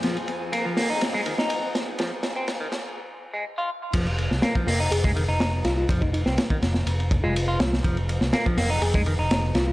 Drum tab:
CC |----------------|----------------|x---------------|----------------|
RD |xxx-x---x-x-x-x-|x-x-x-x---------|xxx-x---x-x-x-x-|x-x-x-x-xxx-x-x-|
HH |------o---------|----------------|------o---------|----------------|
SD |o-----o-o--o--o-|o-o-o-o---------|---oo-o-----o-o-|---oo-oo------oo|
BD |----------------|----------------|o----o---o------|oo---o----o-----|

CC |----------------|
RD |xxx-x---x-x-x-x-|
HH |------o---------|
SD |---oo-o-----o-o-|
BD |o----o---o------|